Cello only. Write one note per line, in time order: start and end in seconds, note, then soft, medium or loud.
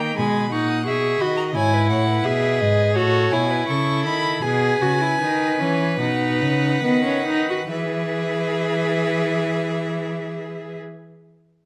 0.00 0.19 D#3 medium
0.18 0.54 B2 medium
0.52 0.88 A#2 medium
0.87 1.21 B2 medium
1.21 1.57 D#3 medium
1.56 1.92 G#2 medium
1.90 2.25 A2 medium
2.25 2.63 B2 medium
2.61 2.98 G#2 medium
2.96 3.32 A2 medium
3.33 3.68 B2 medium
3.69 4.07 C#3 medium
4.06 4.42 D#3 medium
4.43 4.80 B2 medium
4.81 5.19 C#3 medium
5.20 5.61 D#3 medium
5.60 5.99 E3 medium
6.00 6.43 B2 medium
6.42 6.83 C#3 medium
6.83 7.69 D#3 medium
7.70 10.78 E3 medium